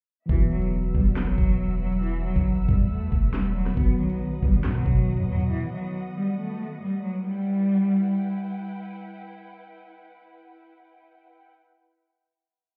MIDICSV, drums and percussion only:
0, 0, Header, 1, 2, 480
1, 0, Start_track
1, 0, Key_signature, 1, "minor"
1, 0, Tempo, 434783
1, 325, Time_signature, 4, 2, 24, 8
1, 14097, End_track
2, 0, Start_track
2, 0, Title_t, "Drums"
2, 324, Note_on_c, 9, 36, 125
2, 324, Note_on_c, 9, 42, 80
2, 435, Note_off_c, 9, 36, 0
2, 435, Note_off_c, 9, 42, 0
2, 565, Note_on_c, 9, 42, 48
2, 675, Note_off_c, 9, 42, 0
2, 684, Note_on_c, 9, 42, 86
2, 795, Note_off_c, 9, 42, 0
2, 1045, Note_on_c, 9, 36, 102
2, 1156, Note_off_c, 9, 36, 0
2, 1165, Note_on_c, 9, 42, 65
2, 1275, Note_off_c, 9, 42, 0
2, 1285, Note_on_c, 9, 38, 119
2, 1285, Note_on_c, 9, 39, 95
2, 1396, Note_off_c, 9, 38, 0
2, 1396, Note_off_c, 9, 39, 0
2, 1404, Note_on_c, 9, 37, 75
2, 1515, Note_off_c, 9, 37, 0
2, 1525, Note_on_c, 9, 36, 103
2, 1635, Note_off_c, 9, 36, 0
2, 1646, Note_on_c, 9, 42, 79
2, 1756, Note_off_c, 9, 42, 0
2, 2125, Note_on_c, 9, 42, 69
2, 2235, Note_off_c, 9, 42, 0
2, 2245, Note_on_c, 9, 42, 80
2, 2355, Note_off_c, 9, 42, 0
2, 2605, Note_on_c, 9, 36, 97
2, 2606, Note_on_c, 9, 42, 82
2, 2715, Note_off_c, 9, 36, 0
2, 2716, Note_off_c, 9, 42, 0
2, 2964, Note_on_c, 9, 42, 83
2, 2965, Note_on_c, 9, 36, 100
2, 3074, Note_off_c, 9, 42, 0
2, 3075, Note_off_c, 9, 36, 0
2, 3085, Note_on_c, 9, 42, 66
2, 3195, Note_off_c, 9, 42, 0
2, 3444, Note_on_c, 9, 36, 102
2, 3445, Note_on_c, 9, 42, 87
2, 3555, Note_off_c, 9, 36, 0
2, 3555, Note_off_c, 9, 42, 0
2, 3684, Note_on_c, 9, 39, 95
2, 3685, Note_on_c, 9, 38, 116
2, 3686, Note_on_c, 9, 42, 78
2, 3795, Note_off_c, 9, 38, 0
2, 3795, Note_off_c, 9, 39, 0
2, 3796, Note_off_c, 9, 42, 0
2, 4044, Note_on_c, 9, 37, 69
2, 4044, Note_on_c, 9, 38, 68
2, 4155, Note_off_c, 9, 37, 0
2, 4155, Note_off_c, 9, 38, 0
2, 4164, Note_on_c, 9, 36, 119
2, 4164, Note_on_c, 9, 42, 84
2, 4274, Note_off_c, 9, 36, 0
2, 4275, Note_off_c, 9, 42, 0
2, 4404, Note_on_c, 9, 42, 49
2, 4515, Note_off_c, 9, 42, 0
2, 4524, Note_on_c, 9, 42, 86
2, 4635, Note_off_c, 9, 42, 0
2, 4885, Note_on_c, 9, 36, 103
2, 4995, Note_off_c, 9, 36, 0
2, 5004, Note_on_c, 9, 42, 63
2, 5115, Note_off_c, 9, 42, 0
2, 5124, Note_on_c, 9, 39, 90
2, 5125, Note_on_c, 9, 38, 116
2, 5235, Note_off_c, 9, 38, 0
2, 5235, Note_off_c, 9, 39, 0
2, 5243, Note_on_c, 9, 37, 73
2, 5354, Note_off_c, 9, 37, 0
2, 5364, Note_on_c, 9, 36, 102
2, 5475, Note_off_c, 9, 36, 0
2, 5484, Note_on_c, 9, 42, 79
2, 5595, Note_off_c, 9, 42, 0
2, 5964, Note_on_c, 9, 42, 73
2, 6075, Note_off_c, 9, 42, 0
2, 14097, End_track
0, 0, End_of_file